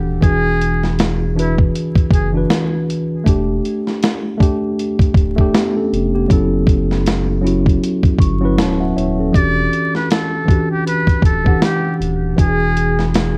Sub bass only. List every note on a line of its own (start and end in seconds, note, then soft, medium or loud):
0.00 0.18 D#1 medium
0.23 1.71 E1 loud
2.11 2.45 F#1 medium
3.27 3.60 E1 loud
5.15 5.49 D1 medium
5.93 6.26 F1 loud
6.30 7.78 F#1 loud
8.19 8.60 G1 loud
8.59 8.92 D1 medium
8.97 9.30 D#1 medium
9.35 9.68 E1 loud
11.23 11.57 D1 medium
12.00 12.34 D#1 loud
12.38 13.38 E1 loud